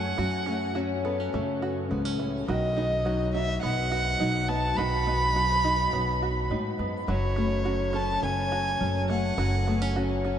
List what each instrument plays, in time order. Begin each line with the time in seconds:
Already playing: upright bass F#2, steel-string acoustic guitar F#2 F#3 A3 C#4 A4, five-string banjo A3 C#4 F#4, fiddle F#5
0.18 upright bass F#2, steel-string acoustic guitar F#2, five-string banjo F#3 F#4
0.46 steel-string acoustic guitar A3, five-string banjo C#4
0.75 steel-string acoustic guitar F#3 C#4, five-string banjo F#4
1.05 five-string banjo B3, steel-string acoustic guitar A4
1.20 five-string banjo C#4
1.33 upright bass F#2, steel-string acoustic guitar C#3, five-string banjo A3
1.62 five-string banjo F#4
1.91 upright bass C#2, steel-string acoustic guitar G#2, five-string banjo B3
2.05 five-string banjo C#4
2.19 steel-string acoustic guitar A2, five-string banjo A3
2.47 upright bass B1, steel-string acoustic guitar B2, five-string banjo D#3 F#4, fiddle D#5
2.77 steel-string acoustic guitar B3, five-string banjo D#4
3.05 steel-string acoustic guitar F#3 D#4, five-string banjo F#4
3.34 five-string banjo D#4, steel-string acoustic guitar F#4, fiddle E5
3.61 upright bass B1, steel-string acoustic guitar F#2, five-string banjo B3, fiddle F#5
3.92 five-string banjo F#4
4.20 upright bass B1, steel-string acoustic guitar F#3 D#4, five-string banjo D#4
4.49 five-string banjo B3, steel-string acoustic guitar B3, fiddle A5
4.77 upright bass B1, steel-string acoustic guitar B2, five-string banjo D#3 F#4, fiddle B5
5.06 steel-string acoustic guitar B3, five-string banjo D#4
5.35 steel-string acoustic guitar F#3 D#4, five-string banjo F#4
5.64 five-string banjo D#4, steel-string acoustic guitar F#4
5.93 upright bass B1, steel-string acoustic guitar F#2, five-string banjo B3
6.22 five-string banjo F#4
6.50 upright bass G#2, steel-string acoustic guitar A2, five-string banjo D#4
6.78 upright bass F#2, steel-string acoustic guitar G#2, five-string banjo B3
7.07 upright bass F#1, steel-string acoustic guitar F#2, five-string banjo F#3 F#4, fiddle C#5
7.36 steel-string acoustic guitar A3, five-string banjo C#4
7.65 steel-string acoustic guitar F#3 C#4, five-string banjo F#4
7.93 five-string banjo C#4, steel-string acoustic guitar A4, fiddle A5
8.22 upright bass F#1, steel-string acoustic guitar C#3, five-string banjo A3, fiddle G#5
8.52 five-string banjo F#4
8.80 upright bass F#1, steel-string acoustic guitar F#3 C#4, five-string banjo C#4
9.10 five-string banjo A3, steel-string acoustic guitar A3, fiddle F#5
9.37 upright bass F#1, steel-string acoustic guitar F#2, five-string banjo F#3 F#4
9.67 steel-string acoustic guitar A3, five-string banjo B3
9.82 five-string banjo C#4
9.96 steel-string acoustic guitar F#3 C#4, five-string banjo F#4
10.25 five-string banjo C#4, steel-string acoustic guitar A4